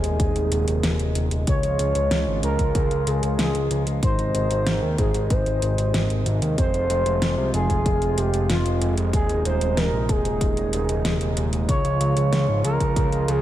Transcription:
Already playing: analog synth pad C3 D#3 G#3 D#4, analog synth lead G#4
0.04 analog synth bass D#1, closed hi-hat
0.20 analog synth bass D#1, kick, closed hi-hat
0.36 analog synth bass D#1, closed hi-hat
0.52 analog synth bass D#1, closed hi-hat
0.68 analog synth bass D#1, closed hi-hat
0.83 analog synth bass D#1, snare, closed hi-hat
0.99 analog synth bass D#1, closed hi-hat
1.15 analog synth bass D#1, closed hi-hat
1.31 analog synth bass D#1, closed hi-hat
1.47 analog synth bass C#2, analog synth pad C#3 F3 G#3 F4, analog synth lead C#5, kick, closed hi-hat
1.63 analog synth bass C#2, closed hi-hat
1.79 analog synth bass C#2, closed hi-hat
1.95 analog synth bass C#2, closed hi-hat
2.11 analog synth bass C#2, snare, closed hi-hat
2.27 analog synth bass G#1
2.43 analog synth bass C#2, analog synth lead A#4, closed hi-hat
2.59 analog synth bass C#2, kick, closed hi-hat
2.75 analog synth bass C#2, kick, closed hi-hat
2.91 analog synth bass C#2, closed hi-hat
3.07 analog synth bass C#2, analog synth lead G#4, closed hi-hat
3.23 analog synth bass C#2, closed hi-hat
3.39 analog synth bass C#2, analog synth lead G#4, snare, closed hi-hat
3.55 analog synth bass C#2, closed hi-hat
3.71 analog synth bass C#2, closed hi-hat
3.87 analog synth bass C#2, closed hi-hat
4.03 analog synth bass G#1, analog synth pad C3 D#3 G#3 D#4, analog synth lead C5, kick, closed hi-hat
4.19 analog synth bass G#1, closed hi-hat
4.35 analog synth bass G#1, closed hi-hat
4.50 analog synth bass G#1, closed hi-hat
4.66 analog synth bass G#1, snare, closed hi-hat
4.82 analog synth bass D#2
4.98 analog synth bass G#1, analog synth lead G#4, kick, closed hi-hat
5.14 analog synth bass G#1, closed hi-hat
5.30 analog synth bass G#1, analog synth lead C5, kick, closed hi-hat
5.46 analog synth bass G#1, closed hi-hat
5.62 analog synth bass G#1, closed hi-hat
5.78 analog synth bass G#1, closed hi-hat
5.94 analog synth bass G#1, snare, closed hi-hat
6.10 analog synth bass G#1, closed hi-hat
6.26 analog synth bass G#1, closed hi-hat
6.42 analog synth bass D#2, closed hi-hat
6.58 analog synth bass F1, analog synth pad F3 F4, analog synth lead C5, kick, closed hi-hat
6.74 analog synth bass F1, closed hi-hat
6.90 analog synth bass F1, closed hi-hat
7.06 analog synth bass F1, closed hi-hat
7.22 analog synth bass F1, snare, closed hi-hat
7.38 analog synth bass C2
7.54 analog synth bass F1, analog synth lead G#4, closed hi-hat
7.70 analog synth bass F1, kick, closed hi-hat
7.86 analog synth bass F1, kick, closed hi-hat
8.01 analog synth bass F1, closed hi-hat
8.17 analog synth bass F1, analog synth lead G4, closed hi-hat
8.33 analog synth bass F1, closed hi-hat
8.49 analog synth bass F1, analog synth lead F4, snare, closed hi-hat
8.65 analog synth bass F1, closed hi-hat
8.81 analog synth bass F1, closed hi-hat
8.97 analog synth bass F1, closed hi-hat
9.13 analog synth bass D#1, analog synth pad D#3 D#4, analog synth lead G#4, kick, closed hi-hat
9.29 analog synth bass D#1, closed hi-hat
9.45 analog synth bass D#1, analog synth lead C5, closed hi-hat
9.61 analog synth bass D#1, closed hi-hat
9.77 analog synth bass D#1, analog synth lead A#4, snare, closed hi-hat
9.93 analog synth bass A#1
10.09 analog synth bass D#1, analog synth lead G#4, kick, closed hi-hat
10.25 analog synth bass D#1, closed hi-hat
10.41 analog synth bass D#1, kick, closed hi-hat
10.57 analog synth bass D#1, closed hi-hat
10.73 analog synth bass D#1, closed hi-hat
10.89 analog synth bass D#1, closed hi-hat
11.05 analog synth bass D#1, snare, closed hi-hat
11.21 analog synth bass D#1, closed hi-hat
11.37 analog synth bass D#1, closed hi-hat
11.53 analog synth bass D#1, closed hi-hat
11.69 analog synth bass C#2, analog synth pad C#3 F3 F4, analog synth lead C#5, kick, closed hi-hat
11.85 analog synth bass C#2, closed hi-hat
12.00 analog synth bass C#2, closed hi-hat
12.16 analog synth bass C#2, closed hi-hat
12.32 analog synth bass C#2, snare, closed hi-hat
12.48 analog synth bass G#1
12.64 analog synth bass C#2, analog synth lead A#4, closed hi-hat
12.80 analog synth bass C#2, kick, closed hi-hat
12.96 analog synth bass C#2, kick, closed hi-hat
13.12 analog synth bass C#2, closed hi-hat
13.28 analog synth bass C#2, analog synth lead G#4, closed hi-hat

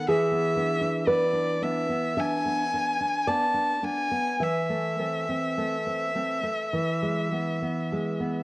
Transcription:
0.08 nylon-string guitar E3 G#4, violin E5
0.32 nylon-string guitar B3
0.56 nylon-string guitar B3 D4
0.81 nylon-string guitar D4
1.07 nylon-string guitar B3 B4, violin D5
1.33 nylon-string guitar D4
1.62 nylon-string guitar B3 D4, violin E5
1.89 nylon-string guitar B3
2.17 nylon-string guitar D4 E5, violin G#5
2.45 nylon-string guitar B3
2.73 nylon-string guitar B3 D4
3.01 nylon-string guitar D4
3.27 nylon-string guitar B3 D5, violin A5
3.54 nylon-string guitar D4
3.83 nylon-string guitar B3 D4, violin G#5
4.11 nylon-string guitar B3
4.40 nylon-string guitar E3 E5, violin E5
4.69 nylon-string guitar A3
4.99 nylon-string guitar A3 C4
5.29 nylon-string guitar C4
5.58 nylon-string guitar A3
5.86 nylon-string guitar C4
6.15 nylon-string guitar A3 C4
6.43 nylon-string guitar A3
6.73 nylon-string guitar E3
7.02 nylon-string guitar G#3
7.32 nylon-string guitar G#3 B3
7.62 nylon-string guitar B3
7.92 nylon-string guitar G#3
8.20 nylon-string guitar B3

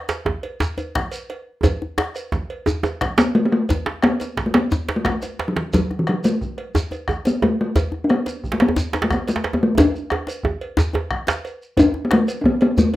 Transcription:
0.09 cowbell, djembe slap, shekere
0.25 bombo low, djembe tone
0.43 cowbell, djembe slap
0.60 djembe slap, djembe bass, shekere
0.78 cowbell, djembe tone, shekere
0.95 bombo rim, bombo low, djembe slap
1.12 cowbell, shekere
1.30 bombo rim, cowbell, djembe slap
1.63 bombo low, cowbell, djembe tone, djembe bass, shekere
1.82 djembe slap, djembe tone
1.98 bombo rim, djembe slap, djembe tone, shekere
2.15 bombo rim, cowbell, shekere
2.32 bombo low, djembe slap, djembe tone, shekere
2.50 cowbell
2.66 bombo rim, djembe tone, djembe bass, shekere
2.83 cowbell, djembe slap, djembe tone, shekere
3.01 bombo rim, bombo low, djembe slap, shekere
3.18 talking drum B3, cowbell, djembe slap, shekere
3.35 talking drum A3, cowbell
3.46 talking drum B3
3.52 talking drum A3, bombo rim
3.69 bombo low, cowbell, djembe slap, djembe bass, shekere
3.86 bombo rim, djembe slap, djembe tone
4.02 talking drum B3, bombo rim, cowbell, djembe slap
4.20 cowbell, djembe slap, shekere
4.37 bombo low, djembe slap, shekere
4.46 talking drum A3
4.54 talking drum B3, bombo rim, cowbell, djembe slap
4.71 djembe slap, djembe bass, shekere
4.88 cowbell, djembe slap, djembe tone, shekere
4.96 talking drum A3
5.05 talking drum A3, bombo rim, bombo low, djembe slap, shekere
5.22 cowbell, djembe slap, shekere
5.39 bombo rim, cowbell, djembe slap
5.48 talking drum F#3
5.56 talking drum E3, djembe slap
5.73 talking drum F#3, bombo low, cowbell, djembe slap, djembe bass, shekere
5.91 bombo rim, djembe slap, djembe tone
5.99 talking drum E3
6.07 talking drum F#3, bombo rim, cowbell, djembe slap
6.24 talking drum A3, cowbell, djembe slap, shekere
6.41 bombo low, shekere
6.58 bombo rim, cowbell
6.75 djembe slap, djembe tone, djembe bass, shekere
6.91 cowbell, djembe tone, shekere
7.08 bombo rim, bombo low, djembe slap, djembe tone, shekere
7.25 talking drum B3, cowbell, djembe slap, shekere
7.42 talking drum A3, bombo rim, cowbell, djembe slap, djembe tone
7.61 talking drum A3
7.76 bombo low, cowbell, djembe slap, djembe tone, djembe bass, shekere
7.92 bombo rim, djembe slap, djembe tone
8.04 talking drum D4
8.09 talking drum B3, bombo rim, cowbell, djembe slap
8.26 cowbell, djembe slap, shekere
8.44 bombo low, shekere
8.52 talking drum A3, djembe slap
8.60 talking drum B3, bombo rim, cowbell, djembe slap
8.68 djembe tone
8.76 djembe slap, djembe bass, shekere
8.93 cowbell, djembe slap, djembe tone, shekere
9.02 talking drum A3, djembe slap
9.10 talking drum B3, bombo rim, bombo low, djembe slap, djembe tone, shekere
9.28 talking drum A3, cowbell, djembe slap, shekere
9.36 djembe slap
9.44 bombo rim, cowbell, djembe slap
9.53 talking drum B3, djembe tone
9.63 talking drum A3
9.78 talking drum D4, bombo low, cowbell, djembe slap, djembe tone, djembe bass, shekere
9.94 djembe slap, shekere
10.10 bombo rim, cowbell, djembe slap, djembe tone
10.27 bombo rim, cowbell, djembe slap, shekere
10.43 bombo low, djembe slap, djembe tone
10.61 cowbell
10.77 djembe slap, djembe tone, djembe bass, shekere
10.93 cowbell, djembe slap, djembe tone
10.95 djembe tone
11.11 bombo rim, bombo low, djembe slap
11.27 cowbell, djembe slap, shekere
11.44 bombo rim, cowbell, shekere
11.62 shekere
11.77 talking drum D4, bombo low, cowbell, djembe bass, shekere
11.94 djembe tone
12.05 talking drum B3
12.11 talking drum A3, bombo rim, cowbell, djembe slap
12.28 cowbell, shekere
12.41 talking drum D4, bombo low
12.46 talking drum B3
12.61 talking drum B3, cowbell, djembe slap
12.78 talking drum A3, djembe slap, djembe bass, shekere

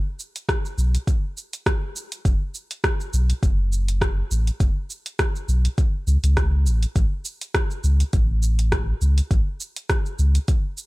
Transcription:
0.20 shaker
0.36 closed hi-hat, shaker
0.49 kick, cross-stick, closed hi-hat, shaker
0.65 shaker
0.78 sub bass B1, shaker
0.95 closed hi-hat, shaker
1.07 kick, closed hi-hat, shaker
1.37 shaker
1.53 closed hi-hat, shaker
1.66 kick, cross-stick, closed hi-hat, shaker
1.96 shaker
2.12 closed hi-hat, shaker
2.25 sub bass F#1, kick, closed hi-hat, shaker
2.55 shaker
2.71 closed hi-hat, shaker
2.84 kick, cross-stick, closed hi-hat, shaker
3.00 shaker
3.13 sub bass B1, shaker
3.30 closed hi-hat, shaker
3.43 sub bass F#1, kick, closed hi-hat, shaker
3.72 shaker
3.88 closed hi-hat, shaker
4.01 kick, cross-stick, closed hi-hat, shaker
4.31 sub bass A1, shaker
4.47 closed hi-hat, shaker
4.60 sub bass F#1, kick, closed hi-hat, shaker
4.90 shaker
5.06 closed hi-hat, shaker
5.19 kick, cross-stick, closed hi-hat, shaker
5.36 shaker
5.48 sub bass B1, shaker
5.65 closed hi-hat, shaker
5.78 kick, closed hi-hat, shaker
6.07 sub bass C#2, shaker
6.23 sub bass C#2, closed hi-hat, shaker
6.37 kick, cross-stick, closed hi-hat, shaker
6.66 sub bass A1, shaker
6.83 closed hi-hat, shaker
6.95 sub bass A1, kick, closed hi-hat, shaker
7.25 shaker
7.41 closed hi-hat, shaker
7.54 kick, cross-stick, closed hi-hat, shaker
7.71 shaker
7.84 sub bass C#2, shaker
8.00 closed hi-hat, shaker
8.13 sub bass A1, kick, closed hi-hat, shaker
8.43 shaker
8.59 closed hi-hat, shaker
8.72 kick, cross-stick, closed hi-hat, shaker
9.01 sub bass C#2, shaker
9.18 closed hi-hat, shaker
9.31 sub bass A1, kick, closed hi-hat, shaker
9.60 shaker
9.76 closed hi-hat, shaker
9.90 kick, cross-stick, closed hi-hat, shaker
10.06 shaker
10.19 sub bass C#2, shaker
10.35 closed hi-hat, shaker
10.48 kick, closed hi-hat, shaker
10.78 shaker

